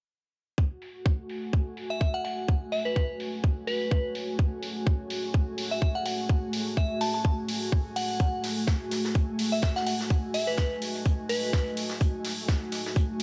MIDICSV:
0, 0, Header, 1, 5, 480
1, 0, Start_track
1, 0, Tempo, 476190
1, 586, Time_signature, 4, 2, 24, 8
1, 13334, End_track
2, 0, Start_track
2, 0, Title_t, "Synth bell"
2, 0, Program_c, 0, 98
2, 1917, Note_on_c, 0, 76, 78
2, 1986, Note_off_c, 0, 76, 0
2, 2023, Note_on_c, 0, 76, 68
2, 2110, Note_off_c, 0, 76, 0
2, 2157, Note_on_c, 0, 78, 79
2, 2226, Note_off_c, 0, 78, 0
2, 2263, Note_on_c, 0, 78, 67
2, 2350, Note_off_c, 0, 78, 0
2, 2742, Note_on_c, 0, 76, 75
2, 2851, Note_off_c, 0, 76, 0
2, 2876, Note_on_c, 0, 71, 78
2, 2946, Note_off_c, 0, 71, 0
2, 2982, Note_on_c, 0, 71, 66
2, 3069, Note_off_c, 0, 71, 0
2, 3703, Note_on_c, 0, 71, 79
2, 4078, Note_off_c, 0, 71, 0
2, 5760, Note_on_c, 0, 76, 81
2, 5827, Note_off_c, 0, 76, 0
2, 5866, Note_on_c, 0, 76, 67
2, 5951, Note_off_c, 0, 76, 0
2, 5999, Note_on_c, 0, 78, 81
2, 6067, Note_off_c, 0, 78, 0
2, 6106, Note_on_c, 0, 78, 68
2, 6192, Note_off_c, 0, 78, 0
2, 6826, Note_on_c, 0, 76, 80
2, 7039, Note_off_c, 0, 76, 0
2, 7066, Note_on_c, 0, 81, 82
2, 7152, Note_off_c, 0, 81, 0
2, 7200, Note_on_c, 0, 81, 68
2, 7268, Note_off_c, 0, 81, 0
2, 8025, Note_on_c, 0, 78, 81
2, 8505, Note_off_c, 0, 78, 0
2, 9598, Note_on_c, 0, 76, 81
2, 9667, Note_off_c, 0, 76, 0
2, 9707, Note_on_c, 0, 76, 70
2, 9792, Note_off_c, 0, 76, 0
2, 9840, Note_on_c, 0, 78, 82
2, 9907, Note_off_c, 0, 78, 0
2, 9946, Note_on_c, 0, 78, 71
2, 10031, Note_off_c, 0, 78, 0
2, 10424, Note_on_c, 0, 76, 80
2, 10532, Note_off_c, 0, 76, 0
2, 10557, Note_on_c, 0, 71, 82
2, 10626, Note_off_c, 0, 71, 0
2, 10663, Note_on_c, 0, 71, 68
2, 10750, Note_off_c, 0, 71, 0
2, 11384, Note_on_c, 0, 71, 84
2, 11759, Note_off_c, 0, 71, 0
2, 13334, End_track
3, 0, Start_track
3, 0, Title_t, "Ambient pad"
3, 0, Program_c, 1, 92
3, 585, Note_on_c, 1, 57, 75
3, 585, Note_on_c, 1, 66, 68
3, 585, Note_on_c, 1, 73, 83
3, 586, Note_on_c, 1, 68, 66
3, 8252, Note_off_c, 1, 73, 0
3, 8266, Note_on_c, 1, 75, 82
3, 13334, Note_off_c, 1, 57, 0
3, 13334, Note_off_c, 1, 66, 0
3, 13334, Note_off_c, 1, 68, 0
3, 13334, Note_off_c, 1, 75, 0
3, 13334, End_track
4, 0, Start_track
4, 0, Title_t, "Analog synth pad"
4, 0, Program_c, 2, 89
4, 586, Note_on_c, 2, 66, 74
4, 902, Note_on_c, 2, 57, 80
4, 1176, Note_on_c, 2, 80, 69
4, 13334, Note_off_c, 2, 57, 0
4, 13334, Note_off_c, 2, 66, 0
4, 13334, Note_off_c, 2, 80, 0
4, 13334, End_track
5, 0, Start_track
5, 0, Title_t, "Drums"
5, 585, Note_on_c, 9, 36, 98
5, 686, Note_off_c, 9, 36, 0
5, 825, Note_on_c, 9, 46, 91
5, 925, Note_off_c, 9, 46, 0
5, 1065, Note_on_c, 9, 36, 108
5, 1166, Note_off_c, 9, 36, 0
5, 1305, Note_on_c, 9, 46, 91
5, 1406, Note_off_c, 9, 46, 0
5, 1545, Note_on_c, 9, 36, 99
5, 1646, Note_off_c, 9, 36, 0
5, 1785, Note_on_c, 9, 46, 95
5, 1886, Note_off_c, 9, 46, 0
5, 2025, Note_on_c, 9, 36, 104
5, 2126, Note_off_c, 9, 36, 0
5, 2265, Note_on_c, 9, 46, 93
5, 2365, Note_off_c, 9, 46, 0
5, 2505, Note_on_c, 9, 36, 108
5, 2606, Note_off_c, 9, 36, 0
5, 2745, Note_on_c, 9, 46, 91
5, 2846, Note_off_c, 9, 46, 0
5, 2985, Note_on_c, 9, 36, 107
5, 3085, Note_off_c, 9, 36, 0
5, 3225, Note_on_c, 9, 46, 94
5, 3326, Note_off_c, 9, 46, 0
5, 3465, Note_on_c, 9, 36, 105
5, 3566, Note_off_c, 9, 36, 0
5, 3704, Note_on_c, 9, 46, 101
5, 3805, Note_off_c, 9, 46, 0
5, 3945, Note_on_c, 9, 36, 107
5, 4046, Note_off_c, 9, 36, 0
5, 4184, Note_on_c, 9, 46, 96
5, 4285, Note_off_c, 9, 46, 0
5, 4425, Note_on_c, 9, 36, 109
5, 4526, Note_off_c, 9, 36, 0
5, 4663, Note_on_c, 9, 46, 98
5, 4764, Note_off_c, 9, 46, 0
5, 4905, Note_on_c, 9, 36, 114
5, 5006, Note_off_c, 9, 36, 0
5, 5143, Note_on_c, 9, 46, 103
5, 5244, Note_off_c, 9, 46, 0
5, 5385, Note_on_c, 9, 36, 111
5, 5486, Note_off_c, 9, 36, 0
5, 5624, Note_on_c, 9, 46, 100
5, 5724, Note_off_c, 9, 46, 0
5, 5865, Note_on_c, 9, 36, 107
5, 5966, Note_off_c, 9, 36, 0
5, 6104, Note_on_c, 9, 46, 100
5, 6205, Note_off_c, 9, 46, 0
5, 6345, Note_on_c, 9, 36, 112
5, 6446, Note_off_c, 9, 36, 0
5, 6584, Note_on_c, 9, 46, 100
5, 6684, Note_off_c, 9, 46, 0
5, 6825, Note_on_c, 9, 36, 114
5, 6926, Note_off_c, 9, 36, 0
5, 7065, Note_on_c, 9, 46, 97
5, 7166, Note_off_c, 9, 46, 0
5, 7305, Note_on_c, 9, 36, 110
5, 7406, Note_off_c, 9, 36, 0
5, 7545, Note_on_c, 9, 46, 100
5, 7646, Note_off_c, 9, 46, 0
5, 7785, Note_on_c, 9, 36, 110
5, 7886, Note_off_c, 9, 36, 0
5, 8025, Note_on_c, 9, 46, 99
5, 8126, Note_off_c, 9, 46, 0
5, 8265, Note_on_c, 9, 36, 104
5, 8265, Note_on_c, 9, 42, 78
5, 8366, Note_off_c, 9, 36, 0
5, 8366, Note_off_c, 9, 42, 0
5, 8503, Note_on_c, 9, 38, 36
5, 8505, Note_on_c, 9, 46, 93
5, 8507, Note_on_c, 9, 42, 63
5, 8604, Note_off_c, 9, 38, 0
5, 8606, Note_off_c, 9, 46, 0
5, 8607, Note_off_c, 9, 42, 0
5, 8742, Note_on_c, 9, 38, 107
5, 8745, Note_on_c, 9, 36, 109
5, 8746, Note_on_c, 9, 42, 79
5, 8843, Note_off_c, 9, 38, 0
5, 8846, Note_off_c, 9, 36, 0
5, 8847, Note_off_c, 9, 42, 0
5, 8985, Note_on_c, 9, 38, 39
5, 8986, Note_on_c, 9, 42, 60
5, 8986, Note_on_c, 9, 46, 96
5, 9085, Note_off_c, 9, 38, 0
5, 9086, Note_off_c, 9, 46, 0
5, 9087, Note_off_c, 9, 42, 0
5, 9116, Note_on_c, 9, 38, 45
5, 9217, Note_off_c, 9, 38, 0
5, 9218, Note_on_c, 9, 42, 75
5, 9225, Note_on_c, 9, 36, 107
5, 9319, Note_off_c, 9, 42, 0
5, 9326, Note_off_c, 9, 36, 0
5, 9460, Note_on_c, 9, 42, 60
5, 9465, Note_on_c, 9, 46, 100
5, 9560, Note_off_c, 9, 42, 0
5, 9566, Note_off_c, 9, 46, 0
5, 9594, Note_on_c, 9, 42, 38
5, 9694, Note_off_c, 9, 42, 0
5, 9696, Note_on_c, 9, 42, 85
5, 9705, Note_on_c, 9, 36, 108
5, 9710, Note_on_c, 9, 38, 107
5, 9797, Note_off_c, 9, 42, 0
5, 9806, Note_off_c, 9, 36, 0
5, 9810, Note_off_c, 9, 38, 0
5, 9836, Note_on_c, 9, 38, 34
5, 9936, Note_off_c, 9, 38, 0
5, 9942, Note_on_c, 9, 42, 64
5, 9944, Note_on_c, 9, 46, 96
5, 10043, Note_off_c, 9, 42, 0
5, 10045, Note_off_c, 9, 46, 0
5, 10081, Note_on_c, 9, 38, 41
5, 10180, Note_on_c, 9, 42, 83
5, 10182, Note_off_c, 9, 38, 0
5, 10185, Note_on_c, 9, 36, 105
5, 10281, Note_off_c, 9, 42, 0
5, 10286, Note_off_c, 9, 36, 0
5, 10424, Note_on_c, 9, 46, 89
5, 10425, Note_on_c, 9, 42, 60
5, 10525, Note_off_c, 9, 42, 0
5, 10525, Note_off_c, 9, 46, 0
5, 10659, Note_on_c, 9, 38, 109
5, 10665, Note_on_c, 9, 36, 105
5, 10667, Note_on_c, 9, 42, 81
5, 10759, Note_off_c, 9, 38, 0
5, 10766, Note_off_c, 9, 36, 0
5, 10768, Note_off_c, 9, 42, 0
5, 10807, Note_on_c, 9, 42, 42
5, 10901, Note_off_c, 9, 42, 0
5, 10901, Note_on_c, 9, 42, 57
5, 10905, Note_on_c, 9, 46, 92
5, 11002, Note_off_c, 9, 42, 0
5, 11006, Note_off_c, 9, 46, 0
5, 11037, Note_on_c, 9, 42, 42
5, 11138, Note_off_c, 9, 42, 0
5, 11144, Note_on_c, 9, 42, 76
5, 11145, Note_on_c, 9, 36, 101
5, 11245, Note_off_c, 9, 36, 0
5, 11245, Note_off_c, 9, 42, 0
5, 11383, Note_on_c, 9, 42, 55
5, 11384, Note_on_c, 9, 46, 92
5, 11484, Note_off_c, 9, 42, 0
5, 11485, Note_off_c, 9, 46, 0
5, 11622, Note_on_c, 9, 42, 77
5, 11625, Note_on_c, 9, 36, 101
5, 11627, Note_on_c, 9, 38, 108
5, 11723, Note_off_c, 9, 42, 0
5, 11726, Note_off_c, 9, 36, 0
5, 11727, Note_off_c, 9, 38, 0
5, 11759, Note_on_c, 9, 42, 37
5, 11860, Note_off_c, 9, 42, 0
5, 11864, Note_on_c, 9, 46, 94
5, 11865, Note_on_c, 9, 42, 57
5, 11965, Note_off_c, 9, 46, 0
5, 11966, Note_off_c, 9, 42, 0
5, 11989, Note_on_c, 9, 38, 52
5, 12090, Note_off_c, 9, 38, 0
5, 12103, Note_on_c, 9, 42, 77
5, 12105, Note_on_c, 9, 36, 98
5, 12203, Note_off_c, 9, 42, 0
5, 12206, Note_off_c, 9, 36, 0
5, 12344, Note_on_c, 9, 42, 57
5, 12344, Note_on_c, 9, 46, 91
5, 12345, Note_on_c, 9, 38, 38
5, 12445, Note_off_c, 9, 38, 0
5, 12445, Note_off_c, 9, 42, 0
5, 12445, Note_off_c, 9, 46, 0
5, 12582, Note_on_c, 9, 42, 87
5, 12585, Note_on_c, 9, 36, 108
5, 12588, Note_on_c, 9, 38, 113
5, 12683, Note_off_c, 9, 42, 0
5, 12686, Note_off_c, 9, 36, 0
5, 12689, Note_off_c, 9, 38, 0
5, 12815, Note_on_c, 9, 42, 55
5, 12823, Note_on_c, 9, 38, 33
5, 12823, Note_on_c, 9, 46, 93
5, 12916, Note_off_c, 9, 42, 0
5, 12923, Note_off_c, 9, 38, 0
5, 12924, Note_off_c, 9, 46, 0
5, 12964, Note_on_c, 9, 38, 46
5, 13065, Note_off_c, 9, 38, 0
5, 13065, Note_on_c, 9, 36, 98
5, 13068, Note_on_c, 9, 42, 74
5, 13166, Note_off_c, 9, 36, 0
5, 13169, Note_off_c, 9, 42, 0
5, 13302, Note_on_c, 9, 42, 57
5, 13334, Note_off_c, 9, 42, 0
5, 13334, End_track
0, 0, End_of_file